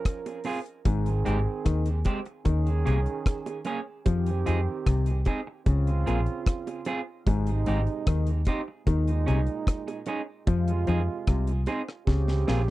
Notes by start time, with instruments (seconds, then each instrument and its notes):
Already playing: trombone section F3 C#4 A#4
0.05 kick, cross-stick, closed hi-hat
0.26 closed hi-hat, high bongo
0.44 clean electric guitar C4 F4 G#4, open hi-hat, low bongo
0.66 closed hi-hat
0.85 fingered electric bass G#1, clav G#2, trombone section D#3 C4 G#4, kick, closed hi-hat, high bongo
1.06 closed hi-hat
1.25 fingered electric bass G#1, clav G#2, clean electric guitar G#3 C4 G4, closed hi-hat
1.65 fingered electric bass D#2, clav D#3, kick, cross-stick, closed hi-hat
1.86 closed hi-hat
2.05 clean electric guitar G#3 C4 G4, kick, closed hi-hat, high bongo
2.25 muted clean electric guitar stroke, closed hi-hat
2.45 fingered electric bass D#2, clav D#3, trombone section D#3 C#4 G#4, kick, closed hi-hat, high bongo
2.67 closed hi-hat
2.85 fingered electric bass C2, clav C3, clean electric guitar A#3 C#4 G#4, closed hi-hat
3.06 closed hi-hat
3.26 kick, cross-stick, closed hi-hat
3.46 muted clean electric guitar stroke, closed hi-hat, high bongo
3.65 clean electric guitar A#3 C#4 G#4, closed hi-hat, low bongo
4.06 fingered electric bass F2, trombone section D#3 C4 G4, clav F3, kick, closed hi-hat, high bongo
4.26 closed hi-hat
4.46 fingered electric bass F2, clav F3, clean electric guitar C4 D#4 G#4, closed hi-hat
4.86 fingered electric bass C2, clav C3, kick, cross-stick, closed hi-hat
5.06 closed hi-hat
5.25 clean electric guitar C4 D#4 G#4, kick, closed hi-hat, high bongo
5.47 muted clean electric guitar stroke
5.66 fingered electric bass C#2, trombone section C#3 C4 F4, clav C#3, kick, closed hi-hat, high bongo
5.87 closed hi-hat
6.06 fingered electric bass A#1, clav A#2, clean electric guitar C4 F4 G#4, closed hi-hat
6.26 closed hi-hat
6.46 kick, cross-stick, closed hi-hat
6.67 closed hi-hat, high bongo
6.85 clean electric guitar C4 F4 G#4, closed hi-hat, low bongo
7.26 fingered electric bass G#1, clav G#2, trombone section C3 G#3 D#4, kick, closed hi-hat, high bongo
7.47 closed hi-hat
7.66 fingered electric bass G#1, clav G#2, clean electric guitar C4 D#4 G4, closed hi-hat
7.87 closed hi-hat
8.07 fingered electric bass D#2, clav D#3, kick, cross-stick, closed hi-hat
8.27 closed hi-hat
8.45 clean electric guitar C4 D#4 G4, kick, closed hi-hat, high bongo
8.68 muted clean electric guitar stroke
8.87 fingered electric bass D#2, trombone section A#2 G#3 D#4, clav D#3, kick, closed hi-hat, high bongo
9.08 closed hi-hat
9.26 fingered electric bass C2, clav C3, clean electric guitar C#4 D#4 G#4, closed hi-hat
9.47 closed hi-hat
9.67 kick, cross-stick, closed hi-hat
9.88 muted clean electric guitar stroke, closed hi-hat, high bongo
10.06 clean electric guitar C#4 D#4 G#4, closed hi-hat, low bongo
10.46 fingered electric bass F2, trombone section C3 G#3 F4, clav F3, kick, closed hi-hat, high bongo
10.68 closed hi-hat
10.87 fingered electric bass F2, clav F3, clean electric guitar C4 D#4 G#4, closed hi-hat
11.27 fingered electric bass C2, clav C3, kick, cross-stick, closed hi-hat
11.47 closed hi-hat
11.66 clean electric guitar C4 D#4 G#4, closed hi-hat, high bongo
11.88 muted clean electric guitar stroke, cross-stick
12.07 fingered electric bass C#2, trombone section C#3 C4 G4, clav C#3, kick, snare, high bongo
12.28 snare
12.48 fingered electric bass A#1, clav A#2, clean electric guitar C4 F4 G#4, snare